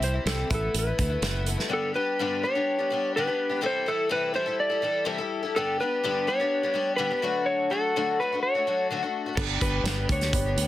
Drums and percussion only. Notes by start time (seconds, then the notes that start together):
0.02 closed hi-hat
0.27 snare, closed hi-hat
0.51 kick, closed hi-hat
0.74 closed hi-hat
0.99 kick, closed hi-hat
1.22 snare, closed hi-hat
1.46 closed hi-hat
1.60 snare
9.37 kick, crash
9.61 kick, closed hi-hat
9.86 snare, closed hi-hat
10.09 kick, closed hi-hat
10.21 snare, closed hi-hat
10.33 kick, closed hi-hat
10.58 closed hi-hat